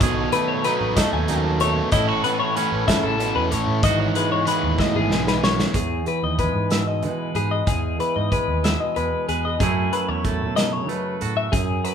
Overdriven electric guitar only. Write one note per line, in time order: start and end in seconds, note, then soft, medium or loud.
0.01 0.65 B2 medium
0.01 0.65 D#3 medium
0.01 0.34 F#3 medium
0.01 0.34 B3 loud
0.01 0.32 D#4 medium
0.01 0.32 A4 loud
0.32 0.64 F#3 soft
0.32 0.65 B3 medium
0.32 0.65 D#4 medium
0.32 0.66 A4 medium
0.64 0.99 F#3 medium
0.64 0.98 B3 medium
0.64 0.96 D#4 medium
0.64 0.96 A4 medium
0.97 1.28 F#3 medium
0.97 1.29 B3 medium
0.97 1.28 D#4 medium
0.97 1.29 A4 medium
1.28 1.63 F#3 medium
1.28 1.63 B3 medium
1.28 1.61 D#4 medium
1.28 1.60 A4 medium
1.61 1.94 F#3 medium
1.61 1.94 B3 medium
1.61 1.91 D#4 medium
1.61 1.91 A4 medium
1.93 2.56 A2 medium
1.93 3.83 E3 loud
1.93 2.25 A3 loud
1.93 2.24 C#4 loud
1.93 2.25 E4 loud
1.93 2.23 A4 loud
2.24 2.55 A3 medium
2.24 2.55 C#4 soft
2.24 2.57 E4 medium
2.24 2.57 A4 medium
2.56 2.88 A3 medium
2.56 2.88 C#4 medium
2.56 2.88 E4 medium
2.56 2.86 A4 medium
2.88 3.17 A3 medium
2.88 3.18 C#4 medium
2.88 3.20 E4 medium
2.88 3.19 A4 medium
3.19 3.52 A3 medium
3.19 3.51 C#4 medium
3.19 3.51 E4 medium
3.19 3.49 A4 medium
3.50 3.82 A3 medium
3.50 3.82 C#4 medium
3.50 3.84 E4 medium
3.50 3.81 A4 medium
3.82 4.47 G#2 medium
3.82 4.44 E3 loud
3.82 4.14 G#3 medium
3.82 4.14 B3 medium
3.82 4.13 E4 loud
4.14 4.45 G#3 medium
4.14 4.45 B3 medium
4.14 4.46 E4 medium
4.45 5.09 E3 medium
4.45 4.79 G#3 medium
4.45 4.77 B3 medium
4.45 4.76 E4 medium
4.78 5.10 G#3 medium
4.78 5.11 B3 medium
4.78 5.12 E4 medium
5.10 5.73 E3 medium
5.10 5.44 G#3 medium
5.10 5.43 B3 medium
5.10 5.42 E4 medium
5.43 5.75 G#3 medium
5.43 5.74 B3 medium
5.43 5.73 E4 medium